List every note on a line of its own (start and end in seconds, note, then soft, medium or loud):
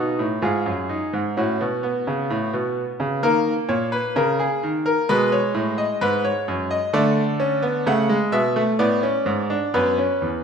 0.00 0.19 B2 medium
0.00 0.25 D#4 medium
0.00 0.25 F#4 medium
0.19 0.42 A2 medium
0.42 0.65 G#2 medium
0.42 0.72 F4 medium
0.42 1.34 G#4 medium
0.66 0.95 F#2 medium
0.89 1.19 D#4 medium
1.13 1.36 G#2 medium
1.37 1.60 A2 medium
1.37 1.66 C#4 medium
1.37 3.19 F#4 medium
1.61 1.89 B2 medium
1.83 3.19 B3 medium
2.07 2.29 C#3 medium
2.30 2.53 A2 medium
2.53 2.82 B2 medium
3.00 3.22 C#3 medium
3.23 3.52 D#3 medium
3.23 5.05 A#3 medium
3.23 3.52 A#4 medium
3.69 3.98 A#2 medium
3.69 3.92 C#5 medium
3.92 4.15 B4 medium
4.16 4.45 C#3 medium
4.16 4.39 A#4 medium
4.39 4.68 G#4 medium
4.63 4.92 D#3 medium
4.86 5.08 A#4 medium
5.09 5.38 B2 medium
5.09 6.89 G#3 medium
5.09 5.32 B4 loud
5.32 5.61 C#5 medium
5.54 5.83 A2 medium
5.78 6.00 D#5 medium
6.01 6.30 G#2 medium
6.01 6.23 B4 medium
6.25 6.53 C#5 medium
6.48 6.76 F#2 medium
6.71 6.93 D#5 medium
6.93 7.83 D3 medium
6.93 7.22 A3 loud
6.93 7.83 D5 medium
7.40 7.62 C#4 medium
7.62 7.85 B3 medium
7.86 8.15 C#3 medium
7.86 8.08 A3 medium
7.86 8.15 F#5 medium
8.09 8.38 G#3 medium
8.32 8.61 B2 medium
8.32 8.61 E5 medium
8.56 8.78 A3 medium
8.79 9.08 A2 medium
8.79 9.01 B3 medium
8.79 9.70 D5 medium
9.03 9.32 C#4 medium
9.26 9.55 G#2 medium
9.50 9.72 D4 medium
9.74 10.03 F#2 medium
9.74 9.96 B3 medium
9.74 10.44 B4 medium
9.98 10.27 C#4 medium
10.22 10.44 E2 medium